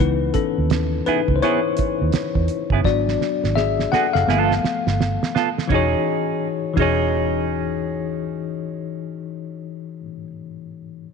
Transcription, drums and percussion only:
0.34 kick, closed hi-hat
0.70 snare, closed hi-hat
1.06 closed hi-hat
1.28 kick
1.43 closed hi-hat
1.77 kick, closed hi-hat
2.12 snare, closed hi-hat
2.35 kick
2.48 closed hi-hat
2.70 kick
2.84 kick, snare
3.08 snare
3.21 snare
3.44 snare
3.57 snare
3.79 snare
3.93 snare
4.15 snare
4.29 snare
4.51 snare
4.64 snare
4.87 snare
5.01 snare
5.23 snare
5.36 snare
5.58 snare
5.70 kick, ride
6.77 kick, ride

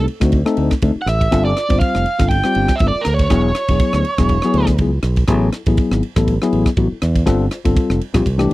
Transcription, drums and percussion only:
0.08 ride
0.21 kick, cross-stick, ride
0.32 kick, ride
0.46 cross-stick
0.57 ride
0.71 kick, cross-stick, ride
0.82 kick, ride
1.07 cross-stick, ride
1.21 kick, ride
1.32 kick, cross-stick, ride
1.57 cross-stick, ride
1.70 kick, ride
1.81 kick, ride
1.95 cross-stick
2.06 ride
2.19 kick, cross-stick, ride
2.31 kick, ride
2.44 cross-stick
2.55 ride
2.68 kick, cross-stick, ride
2.79 kick, ride
3.05 cross-stick, ride
3.19 kick, ride
3.30 kick, cross-stick, ride
3.55 cross-stick, ride
3.68 kick, ride
3.79 kick, ride
3.93 cross-stick
4.05 ride
4.18 kick, cross-stick, ride
4.29 kick, ride
4.42 cross-stick
4.54 ride
4.67 kick, cross-stick, ride
4.78 kick, ride
5.03 cross-stick, ride
5.16 kick, ride
5.28 kick, cross-stick, ride
5.53 cross-stick, ride
5.66 kick, ride
5.77 kick, ride
5.92 cross-stick
6.03 ride
6.16 kick, cross-stick, ride
6.28 kick, ride
6.42 cross-stick
6.53 ride
6.66 kick, cross-stick, ride
6.77 kick, ride
7.02 cross-stick, ride
7.16 kick, ride
7.27 kick, cross-stick, ride
7.51 cross-stick, ride
7.65 kick, ride
7.77 kick, ride
7.90 cross-stick
8.01 ride
8.14 kick, cross-stick, ride
8.26 kick, ride
8.39 cross-stick

